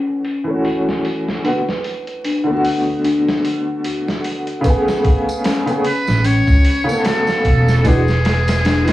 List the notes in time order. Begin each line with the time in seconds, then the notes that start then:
Already playing: C#4 B4
0.24 open hi-hat
0.44 E3 A3
0.50 C#4 F#4
0.65 F#4, open hi-hat
0.89 snare
1.05 open hi-hat
1.28 snare
1.44 D3 A3 B3 B4, open hi-hat
1.49 F#4
1.69 snare
1.84 open hi-hat
2.07 closed hi-hat
2.24 D4, open hi-hat
2.44 D3 A3
2.50 B3 F#4
2.65 open hi-hat
3.04 D4, open hi-hat
3.28 snare
3.45 open hi-hat
3.84 F#4, open hi-hat
4.09 snare
4.24 open hi-hat
4.47 closed hi-hat
4.61 C#3 A3 B4, kick, open hi-hat, tambourine
4.67 B3 G#4
4.88 snare, tambourine
5.05 kick, open hi-hat
5.29 tambourine
5.44 C#4, snare, open hi-hat, tambourine
5.66 C#3 A3 B3, closed hi-hat, tambourine
5.71 G#4
5.85 B4, open hi-hat
6.07 A1, snare, tambourine
6.25 C#4 C#5, open hi-hat, tambourine
6.47 C#2, kick, tambourine
6.65 open hi-hat
6.84 C#3 A3
6.89 B3, tambourine
6.93 A4
7.05 F#4 A4, snare, open hi-hat, tambourine
7.27 snare, tambourine
7.45 E1, kick, open hi-hat
7.68 snare, tambourine
7.84 E3 G#3 D4 G#4 B4, kick, open hi-hat, tambourine
7.88 F#4
8.08 snare, tambourine
8.25 snare, open hi-hat
8.48 snare, open hi-hat, tambourine
8.65 D4, snare, open hi-hat, tambourine
8.84 E3 G#3, open hi-hat, tambourine
8.89 snare